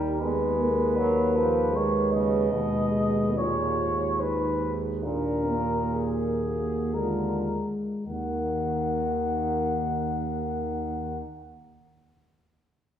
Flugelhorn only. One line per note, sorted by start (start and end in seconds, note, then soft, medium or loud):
0.00 0.21 A#4 soft
0.22 1.77 B4 soft
1.76 2.12 C#5 soft
2.13 3.39 D#5 soft
3.37 4.21 C#5 soft
4.20 4.73 B4 soft
5.04 5.90 A#4 soft
5.93 6.95 G#4 soft
6.94 7.61 A#4 soft
8.07 11.18 F#5 soft